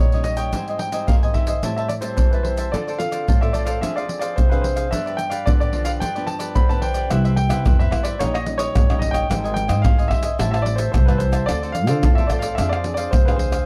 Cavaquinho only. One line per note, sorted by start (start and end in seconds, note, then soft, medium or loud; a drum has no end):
0.00 0.11 G4 soft
0.00 0.11 C#5 medium
0.00 0.11 D#5 medium
0.14 0.38 G4 soft
0.14 0.37 C#5 soft
0.14 0.37 D#5 medium
0.38 0.52 G4 medium
0.38 0.52 C#5 medium
0.38 0.52 D#5 medium
0.54 0.66 G4 soft
0.54 0.67 C5 soft
0.54 0.67 D#5 soft
0.54 0.67 G#5 soft
0.68 0.79 C5 soft
0.68 0.80 D#5 medium
0.68 0.80 G#5 medium
0.81 muted cavaquinho stroke soft
0.93 1.07 C5 soft
0.93 1.07 D#5 medium
0.93 1.06 G#5 medium
1.09 1.21 G4 soft
1.09 1.22 C5 soft
1.09 1.22 D#5 soft
1.09 1.21 G#5 medium
1.23 1.34 C5 medium
1.23 1.35 D#5 medium
1.23 1.35 G#5 medium
1.35 1.48 G4 soft
1.35 1.48 C5 soft
1.35 1.47 D#5 soft
1.35 1.46 G#5 soft
1.47 1.62 C5 medium
1.47 1.62 D#5 medium
1.47 1.61 G#5 medium
1.63 1.76 G4 soft
1.63 1.76 C5 medium
1.63 1.76 E5 medium
1.63 1.77 A5 medium
1.78 1.89 C5 medium
1.78 1.89 E5 medium
1.78 1.90 A5 medium
1.90 muted cavaquinho stroke soft
2.02 2.30 C5 medium
2.02 2.30 E5 medium
2.02 2.30 A5 medium
2.33 2.57 C5 soft
2.33 2.57 E5 medium
2.33 2.56 A5 medium
2.57 2.72 C5 medium
2.57 2.71 E5 medium
2.57 2.71 A5 medium
2.74 2.86 F4 soft
2.74 2.86 A4 soft
2.74 2.86 C5 soft
2.74 2.86 D5 medium
2.88 2.99 A4 medium
2.88 2.99 C5 medium
2.88 2.99 D5 medium
2.99 muted cavaquinho stroke soft
3.12 3.26 A4 medium
3.12 3.26 C5 medium
3.12 3.25 D5 medium
3.28 3.40 F4 soft
3.28 3.40 A4 soft
3.28 3.41 C5 medium
3.28 3.41 D5 soft
3.42 3.53 A4 soft
3.42 3.53 C5 medium
3.42 3.54 D5 medium
3.53 3.67 F4 soft
3.53 3.66 A4 soft
3.53 3.66 C5 soft
3.53 3.65 D5 soft
3.66 3.81 A4 medium
3.66 3.80 C5 medium
3.66 3.80 D5 medium
3.83 3.95 D4 soft
3.83 3.95 G#4 soft
3.83 3.96 C5 medium
3.83 3.96 F5 medium
3.97 4.08 G#4 medium
3.97 4.08 C5 medium
3.97 4.08 F5 medium
4.08 muted cavaquinho stroke soft
4.21 4.49 G#4 medium
4.21 4.49 C5 medium
4.21 4.48 F5 medium
4.51 4.76 G#4 soft
4.51 4.75 C5 medium
4.51 4.75 F5 medium
4.76 4.90 G#4 medium
4.76 4.90 C5 medium
4.76 4.90 F5 medium
4.92 5.04 F4 soft
4.92 5.05 G4 soft
4.92 5.05 B4 soft
4.92 5.05 D5 soft
5.06 5.17 G4 soft
5.06 5.17 B4 medium
5.06 5.18 D5 medium
5.18 muted cavaquinho stroke soft
5.30 5.45 G4 medium
5.30 5.44 B4 medium
5.30 5.44 D5 medium
5.46 5.59 F4 soft
5.46 5.59 G4 soft
5.46 5.60 B4 medium
5.46 5.60 D5 medium
5.61 5.72 G4 medium
5.61 5.73 B4 medium
5.61 5.73 D5 medium
5.73 5.86 F4 soft
5.73 5.85 G4 soft
5.73 5.85 B4 medium
5.73 5.84 D5 medium
5.85 6.00 G4 medium
5.85 6.00 B4 medium
5.85 5.99 D5 medium
6.01 6.14 F4 medium
6.01 6.14 G4 medium
6.01 6.14 B4 soft
6.01 6.14 D5 medium
6.15 6.27 G4 medium
6.15 6.27 B4 medium
6.15 6.27 D5 medium
6.27 muted cavaquinho stroke soft
6.39 6.68 G4 medium
6.39 6.68 B4 medium
6.39 6.67 D5 medium
6.69 6.94 G4 soft
6.69 6.93 B4 medium
6.69 6.93 D5 medium
6.94 7.09 G4 medium
6.94 7.09 B4 medium
6.94 7.08 D5 medium
7.10 7.23 E4 soft
7.10 7.23 B4 medium
7.10 7.23 C5 soft
7.10 7.23 E5 soft
7.25 7.36 B4 medium
7.25 7.36 C5 medium
7.25 7.36 E5 medium
7.36 muted cavaquinho stroke soft
7.49 7.63 B4 medium
7.49 7.64 C5 medium
7.49 7.63 E5 medium
7.65 7.78 E4 medium
7.65 7.78 B4 medium
7.65 7.78 C5 medium
7.65 7.78 E5 medium
7.79 7.91 B4 medium
7.79 7.90 C5 medium
7.79 7.91 E5 medium
7.91 8.05 E4 medium
7.91 8.03 B4 medium
7.91 8.04 C5 medium
7.91 8.02 E5 medium
8.04 8.18 B4 medium
8.04 8.18 C5 medium
8.04 8.18 E5 medium
8.20 8.33 D#4 medium
8.20 8.33 G4 medium
8.20 8.33 C#5 medium
8.20 8.33 D#5 medium
8.34 8.45 G4 soft
8.34 8.46 C#5 medium
8.34 8.46 D#5 medium
8.46 muted cavaquinho stroke soft
8.59 8.87 G4 medium
8.59 8.87 C#5 medium
8.59 8.86 D#5 medium
8.89 9.13 G4 medium
8.89 9.13 C#5 medium
8.89 9.12 D#5 medium
9.13 9.28 G4 medium
9.13 9.28 C#5 medium
9.13 9.27 D#5 medium
9.29 9.42 G4 soft
9.29 9.42 C5 soft
9.29 9.43 D#5 medium
9.29 9.43 G#5 soft
9.44 9.55 C5 medium
9.44 9.55 D#5 medium
9.44 9.55 G#5 medium
9.55 muted cavaquinho stroke soft
9.68 9.83 C5 medium
9.68 9.82 D#5 medium
9.68 9.82 G#5 medium
9.84 9.97 G4 medium
9.84 9.97 C5 medium
9.84 9.97 D#5 medium
9.84 9.97 G#5 medium
9.98 10.10 C5 medium
9.98 10.10 D#5 medium
9.98 10.11 G#5 medium
10.10 10.24 G4 soft
10.10 10.23 C5 medium
10.10 10.23 D#5 medium
10.10 10.22 G#5 medium
10.23 10.38 C5 medium
10.23 10.37 D#5 medium
10.23 10.37 G#5 medium
10.39 10.52 G4 medium
10.39 10.52 C5 medium
10.39 10.52 E5 medium
10.39 10.52 A5 medium
10.53 10.64 C5 medium
10.53 10.64 E5 medium
10.53 10.65 A5 medium
10.65 muted cavaquinho stroke soft
10.78 11.06 C5 medium
10.78 11.06 E5 medium
10.78 11.06 A5 medium
11.08 11.32 C5 medium
11.08 11.32 E5 medium
11.08 11.31 A5 medium
11.32 11.47 C5 medium
11.32 11.47 E5 medium
11.32 11.46 A5 medium
11.48 11.61 F4 soft
11.48 11.62 A4 soft
11.48 11.62 C5 medium
11.48 11.61 D5 medium
11.63 11.74 A4 medium
11.63 11.74 C5 medium
11.63 11.74 D5 medium
11.75 muted cavaquinho stroke soft
11.88 12.02 A4 medium
11.88 12.02 C5 medium
11.88 12.02 D5 medium
12.04 12.16 F4 medium
12.04 12.17 A4 medium
12.04 12.17 C5 medium
12.04 12.17 D5 medium
12.18 12.29 A4 medium
12.18 12.29 C5 medium
12.18 12.30 D5 medium
12.29 12.43 F4 soft
12.29 12.43 A4 medium
12.29 12.42 C5 medium
12.29 12.41 D5 medium
12.43 12.57 A4 medium
12.43 12.57 C5 medium
12.43 12.56 D5 medium
12.58 12.71 D4 medium
12.58 12.71 G#4 medium
12.58 12.72 C5 medium
12.58 12.72 F5 medium
12.73 12.84 G#4 medium
12.73 12.85 C5 medium
12.73 12.85 F5 medium
12.85 muted cavaquinho stroke soft
12.98 13.26 G#4 medium
12.98 13.25 C5 medium
12.98 13.25 F5 medium
13.28 13.52 G#4 medium
13.28 13.52 C5 medium
13.28 13.51 F5 medium
13.52 13.66 G#4 medium
13.52 13.66 C5 medium
13.52 13.66 F5 medium